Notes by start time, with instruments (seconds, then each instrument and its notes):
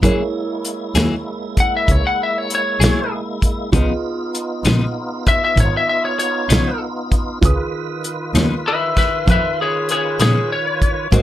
0.03 double bass F#2, clean electric guitar F#3 A#3 E4 G#4, tonewheel organ G#3 A#3 E4, grand piano E4 G#4 A#4 C#5, kick, closed hi-hat
0.65 closed hi-hat
0.95 double bass D#2, clean electric guitar F#3 A#3 E4 G#4, snare, closed hi-hat
1.57 lead electric guitar F#5, kick, closed hi-hat
1.77 lead electric guitar E5
1.88 double bass C#2, lead electric guitar C#5, kick, closed hi-hat
2.07 lead electric guitar F#5
2.23 lead electric guitar E5
2.38 lead electric guitar C#5
2.50 closed hi-hat
2.55 lead electric guitar C#5
2.80 double bass B1, clean electric guitar F#3 A#3 E4 G#4, snare, closed hi-hat
3.42 kick, closed hi-hat
3.72 double bass C#2, clean electric guitar C#3 F3 B3 D#4, tonewheel organ B3 D#4 F4, grand piano F4 G#4 B4 D#5, kick, closed hi-hat
4.35 closed hi-hat
4.64 double bass A#1, clean electric guitar C#3 F3 B3 D#4, snare, closed hi-hat
5.26 lead electric guitar E5, kick, closed hi-hat
5.45 lead electric guitar E5
5.57 double bass G#1, lead electric guitar C#5, kick, closed hi-hat
5.77 lead electric guitar E5
5.89 lead electric guitar E5
6.05 lead electric guitar C#5
6.19 lead electric guitar C#5, closed hi-hat
6.49 double bass B1, clean electric guitar C#3 F3 B3 D#4, snare, closed hi-hat
7.12 kick, closed hi-hat
7.41 double bass C#2, tonewheel organ D#3 F4 B4, grand piano F4 G#4 B4, kick, closed hi-hat
7.45 grand piano D#6
8.04 closed hi-hat
8.34 double bass D#2, clean electric guitar C#3 F3 B3 D#4, snare, closed hi-hat
8.68 lead electric guitar B4 E5
8.97 lead electric guitar B4 E5, kick, snare, closed hi-hat
9.27 double bass F2, lead electric guitar B4, kick, closed hi-hat
9.31 lead electric guitar E5
9.61 lead electric guitar G#4 C#5
9.89 lead electric guitar G#4 C#5, closed hi-hat
10.19 double bass A#2, clean electric guitar C#3 F3 B3 D#4, lead electric guitar G#4 C#5, snare, closed hi-hat
10.52 lead electric guitar C#5
10.82 kick, closed hi-hat
11.11 double bass G#2, clean electric guitar G#2 F#3 A#3 C4, tonewheel organ A#3 C4 F#4, grand piano F#4 A#4 C5 D#5, kick, closed hi-hat